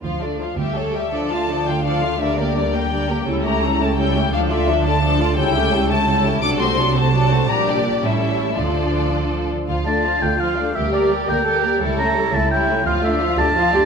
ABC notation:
X:1
M:6/8
L:1/8
Q:3/8=112
K:Dm
V:1 name="Oboe"
z6 | z6 | z6 | z6 |
z6 | z6 | z6 | z6 |
z6 | z a2 g f2 | e d2 g3 | z b2 a g2 |
f e2 a3 |]
V:2 name="Violin section"
f d f e ^c e | z a2 g f2 | e d2 g3 | z b2 a g2 |
f e2 a3 | g3 a3 | d' c'2 a3 | b d2 e3 |
d4- d z | f d f d f d | B d B d B d | ^c e c e c e |
f d f d f d |]
V:3 name="Violin section"
F D F G A G | [Ad] [Ff] [Ad] [Ff] [Ad] [Ff] | [Bd] [GB] [Bd] [GB] [Bd] [GB] | [^CA] [EG] [CA] [EG] [CA] [EG] |
[DA] [Fd] [DA] [Fd] [DA] [Fd] | [^CA] [EG] [CA] [EG] [CA] [EG] | [Ad] [^Fc] [Ad] [Fc] [Ad] [Fc] | [Gd]3 [EA]3 |
[FA]4- [FA] z | F D F D F D | G B G B G B | E ^C E C E C |
F D F D F D |]
V:4 name="Cello section"
D,,3 D,,3 | D,6- | D,6 | ^C,6 |
D,6 | ^C,6 | C,6 | B,,3 A,,3 |
D,4- D, z | F6 | G3 B A G | A3 E3 |
F3 G F G |]
V:5 name="Viola section"
F, A, F, G, A, G, | [F,D] [A,F] [F,D] [A,F] [F,D] [A,F] | [G,D] B, [G,D] B, [G,D] B, | [G,E] [A,^C] [G,E] [A,C] [G,E] [A,C] |
[F,D] [A,F] [F,D] [A,F] [F,D] [A,F] | [G,E] [A,^C] [G,E] [A,C] [G,E] [A,C] | [^F,D] [A,C] [F,D] [A,C] [F,D] [A,C] | [G,D]3 [G,^C]3 |
[F,D]4- [F,D] z | F, A, F, A, F, A, | G, B, G, B, G, B, | G, A, G, A, G, A, |
F, A, F, A, F, A, |]
V:6 name="Double bass section" clef=bass
D,,2 z D,,2 z | D,,6- | D,,6 | ^C,,6 |
D,,6 | ^C,,6 | C,,6 | B,,,3 A,,,3 |
D,,4- D,, z | D,,3 D,,3 | D,,3 D,,3 | ^C,,3 C,,3 |
D,,3 D,,3 |]